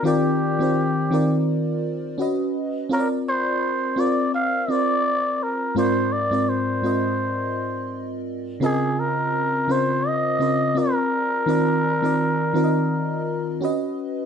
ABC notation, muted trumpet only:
X:1
M:4/4
L:1/8
Q:"Swing 16ths" 1/4=84
K:Eblyd
V:1 name="Muted trumpet"
G4 z4 | B c2 d f d2 B | c d c4- c z | _A B2 c e2 B2- |
B6 z2 |]